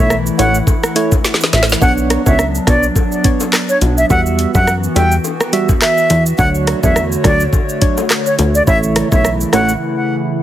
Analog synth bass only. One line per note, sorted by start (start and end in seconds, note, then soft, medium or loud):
0.00 0.31 B1 medium
0.39 0.62 A1 loud
1.53 1.76 A1 medium
1.82 2.17 B1 loud
2.26 2.59 C#2 medium
2.67 2.90 B1 loud
3.82 4.04 B1 loud
4.10 4.46 E2 loud
4.55 4.88 F#2 loud
4.96 5.19 E2 loud
6.10 6.33 E2 loud
6.39 6.74 D2 loud
6.83 7.16 E2 medium
7.24 7.47 D2 loud
8.39 8.62 D2 loud
8.67 9.03 A1 loud
9.12 9.45 B1 medium
9.53 9.76 A1 loud